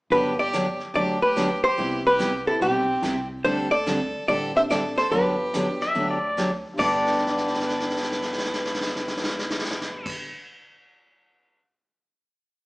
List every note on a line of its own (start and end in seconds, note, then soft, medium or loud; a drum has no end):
0.10 0.78 G1 medium
0.10 0.33 D3 soft
0.10 0.33 F#3 medium
0.10 0.33 B3 medium
0.10 0.33 D4 medium
0.10 0.34 G4 medium
0.10 0.37 G4 medium
0.10 0.39 B4 medium
0.10 brush sweep soft
0.39 0.78 G4 medium
0.39 0.78 D5 medium
0.53 0.65 D3 medium
0.53 0.65 F#3 medium
0.53 0.65 B3 medium
0.53 0.65 D4 medium
0.53 0.65 G4 medium
0.53 snare medium
0.53 hi-hat pedal medium
0.80 snare soft
0.94 1.61 D2 medium
0.94 1.16 D3 medium
0.94 1.17 F#3 medium
0.94 1.17 B3 medium
0.94 1.17 D4 medium
0.94 1.17 G4 medium
0.94 1.21 G4 medium
0.94 1.22 D5 medium
0.94 brush sweep soft
1.22 1.62 G4 medium
1.22 1.63 B4 medium
1.36 1.48 D3 medium
1.36 1.48 F#3 medium
1.36 1.48 B3 medium
1.36 1.48 D4 medium
1.36 1.49 G4 medium
1.36 snare medium
1.36 hi-hat pedal medium
1.64 2.04 G4 medium
1.64 2.06 C5 loud
1.78 2.45 C2 medium
1.78 2.00 C3 medium
1.78 2.00 G3 medium
1.78 2.00 B3 medium
1.78 2.41 C4 medium
1.78 2.42 E4 soft
1.78 2.00 E4 medium
1.78 2.00 G4 medium
1.78 2.42 G4 medium
1.78 2.42 B4 medium
1.78 brush sweep soft
2.06 2.45 G4 medium
2.06 2.45 B4 medium
2.19 2.31 C3 medium
2.19 2.31 G3 medium
2.19 2.31 B3 medium
2.19 2.32 E4 medium
2.19 2.32 G4 medium
2.19 snare medium
2.19 hi-hat pedal medium
2.46 2.60 C4 medium
2.46 2.60 E4 medium
2.46 2.61 E4 medium
2.46 2.60 G4 medium
2.46 2.62 A4 medium
2.46 2.61 B4 medium
2.61 2.97 B1 medium
2.61 2.84 C3 medium
2.61 2.84 G3 medium
2.61 2.84 B3 medium
2.61 3.26 C4 medium
2.61 2.84 E4 medium
2.61 3.27 G4 medium
2.61 2.84 G4 medium
2.61 brush sweep soft
3.02 3.38 C2 medium
3.02 3.15 C3 medium
3.02 3.15 G3 medium
3.02 3.15 B3 medium
3.02 3.15 E4 medium
3.02 3.15 G4 medium
3.02 snare medium
3.02 hi-hat pedal medium
3.44 4.12 D2 medium
3.44 3.67 D3 medium
3.44 3.67 G3 medium
3.44 3.69 C4 medium
3.44 3.67 C4 medium
3.44 3.69 D4 medium
3.44 3.67 D4 medium
3.44 3.70 G4 medium
3.44 3.67 G4 medium
3.44 3.70 A4 medium
3.44 3.73 C5 medium
3.44 brush sweep soft
3.71 4.25 A4 medium
3.71 4.27 D5 loud
3.86 3.98 D3 medium
3.86 3.99 G3 medium
3.86 3.99 C4 medium
3.86 3.99 D4 medium
3.86 3.99 G4 medium
3.86 snare medium
3.86 hi-hat pedal medium
4.28 4.96 A1 medium
4.28 4.51 D3 medium
4.28 4.51 G3 medium
4.28 4.51 C4 medium
4.28 4.51 D4 medium
4.28 4.51 G4 medium
4.28 4.54 A4 medium
4.28 4.56 D5 loud
4.28 brush sweep soft
4.55 5.09 C4 medium
4.55 5.09 D4 medium
4.55 5.09 G4 medium
4.55 5.10 A4 medium
4.55 4.62 C5 medium
4.55 4.62 E5 medium
4.70 4.82 D3 medium
4.70 4.82 G3 medium
4.70 4.82 C4 medium
4.70 4.82 D4 medium
4.70 4.83 G4 medium
4.70 4.96 A4 medium
4.70 4.98 D5 loud
4.70 snare medium
4.70 hi-hat pedal medium
4.97 5.11 A4 medium
4.97 5.11 C5 medium
4.97 snare soft
5.11 5.78 G1 medium
5.11 5.34 D3 medium
5.11 5.34 F#3 medium
5.11 5.34 B3 medium
5.11 5.35 D4 medium
5.11 6.34 G4 medium
5.11 5.35 G4 medium
5.11 6.33 B4 medium
5.11 brush sweep soft
5.53 5.66 D3 medium
5.53 5.66 F#3 medium
5.53 5.78 B3 medium
5.53 5.66 B3 medium
5.53 5.78 D4 medium
5.53 5.66 D4 medium
5.53 5.78 F#4 medium
5.53 5.79 G4 medium
5.53 5.66 G4 medium
5.53 snare medium
5.53 hi-hat pedal medium
5.81 6.09 E5 medium
5.81 snare soft
5.95 6.62 D2 medium
5.95 6.17 D3 medium
5.95 6.17 F#3 medium
5.95 6.17 B3 medium
5.95 6.18 D4 medium
5.95 6.18 G4 medium
5.95 brush sweep soft
6.10 6.50 D5 medium
6.37 6.49 D3 medium
6.37 6.49 F#3 medium
6.37 6.49 B3 medium
6.37 6.49 D4 medium
6.37 6.49 G4 medium
6.37 snare medium
6.37 hi-hat pedal medium
6.73 10.09 G2 medium
6.73 10.10 D3 medium
6.78 10.08 G1 medium
6.78 10.28 G2 medium
6.78 10.28 D3 medium
6.78 10.12 A3 medium
6.78 10.30 B3 medium
6.78 10.30 D4 medium
6.78 10.31 G4 medium
6.78 10.08 B4 medium
6.78 10.08 D5 medium
6.78 kick loud
6.78 crash medium
6.82 10.13 B3 medium
7.06 snare soft
7.12 snare soft
7.18 10.07 A4 soft
7.18 snare soft
7.27 10.11 D5 soft
7.27 snare medium
7.36 10.15 F#5 soft
7.36 snare medium
7.45 10.20 A5 soft
7.45 snare soft
7.54 10.25 D6 soft
7.54 snare medium
7.60 snare medium
7.66 10.30 F#6 soft
7.66 snare medium
7.77 10.36 A6 soft
7.77 snare medium
7.90 snare medium
7.96 snare medium
8.02 snare medium
8.12 snare medium
8.22 snare medium
8.32 snare medium
8.38 snare medium
8.44 snare medium
8.54 snare medium
8.65 snare medium
8.74 snare medium
8.81 snare medium
8.87 snare medium
8.96 snare medium
9.08 snare medium
9.17 snare medium
9.23 snare medium
9.29 snare medium
9.39 snare medium
9.50 snare medium
9.59 snare medium
9.65 snare medium
9.71 snare medium
9.82 snare medium
10.06 kick loud
10.06 crash loud